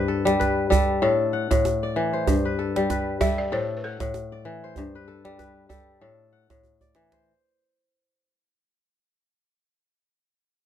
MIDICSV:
0, 0, Header, 1, 4, 480
1, 0, Start_track
1, 0, Tempo, 623053
1, 1749, Time_signature, 4, 2, 24, 8
1, 8207, End_track
2, 0, Start_track
2, 0, Title_t, "Balafon"
2, 0, Program_c, 0, 12
2, 2472, Note_on_c, 0, 76, 104
2, 2596, Note_off_c, 0, 76, 0
2, 2606, Note_on_c, 0, 74, 88
2, 2704, Note_off_c, 0, 74, 0
2, 2719, Note_on_c, 0, 72, 91
2, 2902, Note_on_c, 0, 71, 55
2, 2912, Note_off_c, 0, 72, 0
2, 2949, Note_off_c, 0, 71, 0
2, 2959, Note_on_c, 0, 69, 77
2, 3404, Note_off_c, 0, 69, 0
2, 8207, End_track
3, 0, Start_track
3, 0, Title_t, "Kora"
3, 0, Program_c, 1, 46
3, 0, Note_on_c, 1, 43, 75
3, 0, Note_on_c, 1, 71, 59
3, 0, Note_on_c, 1, 74, 65
3, 64, Note_on_c, 1, 69, 61
3, 195, Note_on_c, 1, 55, 91
3, 302, Note_off_c, 1, 71, 0
3, 305, Note_on_c, 1, 71, 68
3, 335, Note_off_c, 1, 74, 0
3, 532, Note_off_c, 1, 55, 0
3, 539, Note_off_c, 1, 69, 0
3, 541, Note_on_c, 1, 55, 87
3, 542, Note_on_c, 1, 69, 77
3, 785, Note_off_c, 1, 69, 0
3, 786, Note_on_c, 1, 45, 88
3, 788, Note_on_c, 1, 69, 74
3, 826, Note_off_c, 1, 43, 0
3, 826, Note_off_c, 1, 55, 0
3, 1025, Note_on_c, 1, 78, 64
3, 1152, Note_off_c, 1, 45, 0
3, 1161, Note_on_c, 1, 45, 75
3, 1252, Note_off_c, 1, 71, 0
3, 1410, Note_on_c, 1, 74, 68
3, 1511, Note_on_c, 1, 52, 80
3, 1643, Note_on_c, 1, 72, 68
3, 1752, Note_on_c, 1, 43, 81
3, 1787, Note_off_c, 1, 45, 0
3, 1787, Note_off_c, 1, 52, 0
3, 1798, Note_off_c, 1, 78, 0
3, 1804, Note_off_c, 1, 69, 0
3, 1890, Note_on_c, 1, 71, 66
3, 1936, Note_off_c, 1, 72, 0
3, 1994, Note_on_c, 1, 69, 66
3, 2128, Note_on_c, 1, 55, 86
3, 2233, Note_off_c, 1, 71, 0
3, 2236, Note_on_c, 1, 71, 65
3, 2263, Note_off_c, 1, 74, 0
3, 2462, Note_off_c, 1, 55, 0
3, 2466, Note_off_c, 1, 69, 0
3, 2469, Note_on_c, 1, 69, 73
3, 2471, Note_on_c, 1, 55, 91
3, 2707, Note_off_c, 1, 69, 0
3, 2710, Note_on_c, 1, 69, 75
3, 2713, Note_on_c, 1, 45, 82
3, 2748, Note_off_c, 1, 43, 0
3, 2748, Note_off_c, 1, 55, 0
3, 2957, Note_on_c, 1, 78, 60
3, 3075, Note_off_c, 1, 45, 0
3, 3084, Note_on_c, 1, 45, 74
3, 3183, Note_off_c, 1, 71, 0
3, 3329, Note_on_c, 1, 74, 59
3, 3429, Note_on_c, 1, 52, 77
3, 3573, Note_on_c, 1, 72, 67
3, 3680, Note_on_c, 1, 43, 81
3, 3709, Note_off_c, 1, 45, 0
3, 3709, Note_off_c, 1, 52, 0
3, 3725, Note_off_c, 1, 69, 0
3, 3726, Note_off_c, 1, 78, 0
3, 3816, Note_on_c, 1, 71, 67
3, 3862, Note_off_c, 1, 72, 0
3, 3911, Note_on_c, 1, 69, 67
3, 4042, Note_on_c, 1, 55, 90
3, 4147, Note_off_c, 1, 71, 0
3, 4151, Note_on_c, 1, 71, 59
3, 4183, Note_off_c, 1, 74, 0
3, 4377, Note_off_c, 1, 55, 0
3, 4386, Note_off_c, 1, 69, 0
3, 4386, Note_on_c, 1, 55, 84
3, 4389, Note_on_c, 1, 69, 68
3, 4631, Note_off_c, 1, 69, 0
3, 4633, Note_on_c, 1, 45, 86
3, 4634, Note_on_c, 1, 69, 77
3, 4669, Note_off_c, 1, 43, 0
3, 4669, Note_off_c, 1, 55, 0
3, 4874, Note_on_c, 1, 78, 65
3, 4999, Note_off_c, 1, 45, 0
3, 5009, Note_on_c, 1, 45, 74
3, 5098, Note_off_c, 1, 71, 0
3, 5248, Note_on_c, 1, 74, 61
3, 5358, Note_on_c, 1, 52, 81
3, 5491, Note_on_c, 1, 72, 63
3, 5617, Note_off_c, 1, 78, 0
3, 5629, Note_off_c, 1, 45, 0
3, 5629, Note_off_c, 1, 52, 0
3, 5649, Note_off_c, 1, 69, 0
3, 6102, Note_off_c, 1, 74, 0
3, 6406, Note_off_c, 1, 72, 0
3, 8207, End_track
4, 0, Start_track
4, 0, Title_t, "Djembe"
4, 70, Note_on_c, 9, 62, 21
4, 147, Note_off_c, 9, 62, 0
4, 208, Note_on_c, 9, 62, 52
4, 285, Note_off_c, 9, 62, 0
4, 315, Note_on_c, 9, 62, 22
4, 315, Note_on_c, 9, 63, 63
4, 392, Note_off_c, 9, 62, 0
4, 392, Note_off_c, 9, 63, 0
4, 554, Note_on_c, 9, 64, 68
4, 631, Note_off_c, 9, 64, 0
4, 1165, Note_on_c, 9, 62, 61
4, 1165, Note_on_c, 9, 64, 64
4, 1242, Note_off_c, 9, 62, 0
4, 1242, Note_off_c, 9, 64, 0
4, 1272, Note_on_c, 9, 63, 69
4, 1349, Note_off_c, 9, 63, 0
4, 1514, Note_on_c, 9, 62, 24
4, 1591, Note_off_c, 9, 62, 0
4, 1752, Note_on_c, 9, 64, 72
4, 1829, Note_off_c, 9, 64, 0
4, 1998, Note_on_c, 9, 62, 21
4, 2075, Note_off_c, 9, 62, 0
4, 2129, Note_on_c, 9, 62, 44
4, 2206, Note_off_c, 9, 62, 0
4, 2234, Note_on_c, 9, 62, 22
4, 2234, Note_on_c, 9, 63, 73
4, 2312, Note_off_c, 9, 62, 0
4, 2312, Note_off_c, 9, 63, 0
4, 2473, Note_on_c, 9, 64, 76
4, 2550, Note_off_c, 9, 64, 0
4, 3084, Note_on_c, 9, 62, 54
4, 3084, Note_on_c, 9, 64, 52
4, 3161, Note_off_c, 9, 62, 0
4, 3161, Note_off_c, 9, 64, 0
4, 3191, Note_on_c, 9, 63, 61
4, 3268, Note_off_c, 9, 63, 0
4, 3429, Note_on_c, 9, 62, 19
4, 3506, Note_off_c, 9, 62, 0
4, 3667, Note_on_c, 9, 62, 19
4, 3667, Note_on_c, 9, 64, 60
4, 3744, Note_off_c, 9, 62, 0
4, 3744, Note_off_c, 9, 64, 0
4, 4046, Note_on_c, 9, 62, 40
4, 4123, Note_off_c, 9, 62, 0
4, 4154, Note_on_c, 9, 63, 60
4, 4231, Note_off_c, 9, 63, 0
4, 4391, Note_on_c, 9, 64, 59
4, 4468, Note_off_c, 9, 64, 0
4, 5008, Note_on_c, 9, 62, 51
4, 5008, Note_on_c, 9, 64, 55
4, 5085, Note_off_c, 9, 62, 0
4, 5085, Note_off_c, 9, 64, 0
4, 5111, Note_on_c, 9, 64, 42
4, 5188, Note_off_c, 9, 64, 0
4, 5246, Note_on_c, 9, 64, 45
4, 5323, Note_off_c, 9, 64, 0
4, 5352, Note_on_c, 9, 62, 55
4, 5429, Note_off_c, 9, 62, 0
4, 5486, Note_on_c, 9, 62, 57
4, 5563, Note_off_c, 9, 62, 0
4, 8207, End_track
0, 0, End_of_file